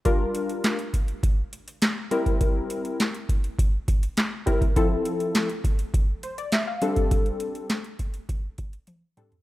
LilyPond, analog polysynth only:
\new Staff \with { instrumentName = "Analog polysynth" } { \time 4/4 \key g \dorian \tempo 4 = 102 << { r1 | r1 | r2 r8 c''16 d''16 e''16 f''8 r16 | r1 | } \\ { <g d' f' bes'>4~ <g d' f' bes'>16 r2 r16 <g c' e' bes'>8~ | <g c' e' bes'>4 r2 r8 <g c' e' bes'>8 | <f c' e' a'>4~ <f c' e' a'>16 r2 r16 <g c' d' a'>8~ | <g c' d' a'>4 r2 r8 <g c' d' a'>8 | } >> }